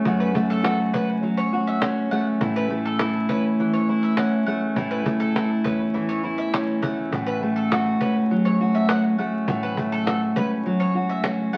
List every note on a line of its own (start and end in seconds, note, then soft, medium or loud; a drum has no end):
0.00 1.21 F#3 medium
0.00 0.34 A3 medium
0.00 0.93 C#4 medium
0.05 0.90 F#1 medium
0.05 2.41 F#2 medium
0.05 0.62 F#4 medium
0.05 cajon bass medium
0.20 0.34 B4 medium
0.35 2.11 A3 medium
0.35 cajon bass loud
0.49 0.78 A4 medium
0.49 cajon slap soft
0.63 1.52 F#4 medium
0.63 cajon slap loud
0.93 2.37 C#2 medium
0.93 1.82 C#4 medium
0.93 1.08 B4 medium
0.93 cajon bass medium
1.22 2.47 F#3 medium
1.22 cajon slap soft
1.37 1.52 C#5 medium
1.53 2.41 F#4 medium
1.53 cajon slap soft
1.67 1.81 E5 medium
1.82 3.29 C#4 medium
1.82 cajon slap loud
2.11 2.70 A3 medium
2.11 2.25 F#5 medium
2.11 cajon slap soft
2.41 3.25 A1 loud
2.41 4.75 A2 medium
2.41 2.98 E4 medium
2.41 cajon bass loud
2.56 2.70 B4 medium
2.70 4.47 A3 medium
2.70 cajon slap soft
2.85 3.13 A4 medium
2.99 3.88 E4 medium
2.99 cajon slap loud
3.29 4.73 E2 medium
3.29 4.18 C#4 medium
3.29 3.43 B4 medium
3.29 cajon bass medium
3.58 5.93 E3 medium
3.58 cajon slap soft
3.73 3.88 C#5 medium
3.89 4.76 E4 medium
4.03 4.17 E5 medium
4.17 5.64 C#4 medium
4.17 4.31 F#5 medium
4.17 cajon slap loud
4.46 5.05 A3 medium
4.46 4.61 F#5 medium
4.46 cajon slap soft
4.76 5.61 A1 loud
4.76 7.11 A2 medium
4.76 5.34 E4 medium
4.76 cajon bass loud
4.91 5.05 B4 medium
5.05 6.83 A3 medium
5.05 cajon bass loud
5.20 5.48 A4 medium
5.20 cajon slap soft
5.35 6.22 E4 medium
5.35 cajon slap loud
5.64 7.08 E2 medium
5.64 6.53 C#4 medium
5.64 5.79 B4 medium
5.64 cajon bass medium
5.81 cajon slap soft
5.94 7.18 E3 medium
5.94 cajon slap soft
6.09 6.23 C#5 medium
6.24 7.12 E4 medium
6.24 cajon slap soft
6.38 6.52 E5 medium
6.54 8.01 C#4 medium
6.54 cajon slap loud
6.82 7.42 A3 medium
6.82 6.96 F#5 medium
6.82 cajon bass loud
6.98 cajon slap soft
7.12 7.96 A1 loud
7.12 9.46 A2 medium
7.12 7.71 F#4 medium
7.12 cajon bass loud
7.26 7.41 B4 medium
7.42 9.18 A3 medium
7.42 cajon slap soft
7.56 7.84 A4 medium
7.72 8.60 F#4 medium
7.72 cajon slap loud
8.01 9.44 C#2 medium
8.01 8.89 C#4 medium
8.01 8.14 B4 medium
8.01 cajon bass medium
8.30 10.65 F#3 medium
8.30 cajon slap soft
8.45 8.59 C#5 medium
8.61 9.48 F#4 medium
8.75 8.88 E5 medium
8.89 10.35 C#4 medium
8.89 9.03 F#5 medium
8.89 cajon slap loud
9.18 9.76 A3 medium
9.18 9.32 F#5 medium
9.18 cajon slap soft
9.47 10.32 A1 loud
9.47 11.57 A2 medium
9.47 10.07 F#4 medium
9.47 cajon bass loud
9.63 9.76 B4 medium
9.77 11.52 A3 medium
9.77 cajon bass loud
9.92 10.20 A4 medium
9.92 cajon slap soft
10.07 10.94 F#4 medium
10.07 cajon slap loud
10.36 11.57 C#2 medium
10.36 11.23 C#4 medium
10.36 10.50 B4 medium
10.36 cajon bass medium
10.65 11.57 F#3 medium
10.65 cajon slap soft
10.80 10.94 C#5 medium
10.95 11.57 F#4 medium
10.95 cajon slap soft
11.09 11.23 E5 medium
11.24 11.57 C#4 medium
11.24 cajon slap loud
11.53 11.57 A3 medium
11.53 11.57 F#5 medium
11.53 cajon slap soft